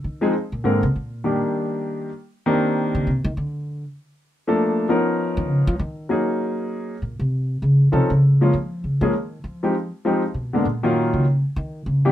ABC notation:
X:1
M:4/4
L:1/8
Q:"Swing" 1/4=198
K:Bb
V:1 name="Grand piano"
z [F,_A,CE_A] z2 [D,A,B,CB] z3 | [E,G,B,DG]4- [E,G,B,DG] z3 | [E,B,CDG]4 z4 | z4 z [F,A,B,DA]3 |
[F,_C_DEB]4- [F,CDEB] z3 | [K:F#] [F,A,CDG]4- [F,A,CDG] z3 | z4 [=F,=C_D_E=A] z2 [F,G,^A,D=F] | z3 [E,G,A,CG] z3 [E,G,^B,D=G] |
z2 [=F,_A,=C_E=G] z2 [=D,^G,^A,B,=D] z [^D,^F,A,^C^E]- | [D,F,A,CE]2 z4 z [=E,=G,B,=D=G] |]
V:2 name="Upright bass" clef=bass
E,2 z B,, _A,, C, B,,2- | B,, z6 z | z3 D, C, E, D,2- | D, z6 z |
z3 E, _D, F, E,2- | [K:F#] _E, z4 z A,, ^B,,- | ^B,,2 _D,2 =C, D,3 | E,2 C, D,3 E,2- |
E, z3 B,,2 A,,2- | A,, C,2 z D,2 C,2 |]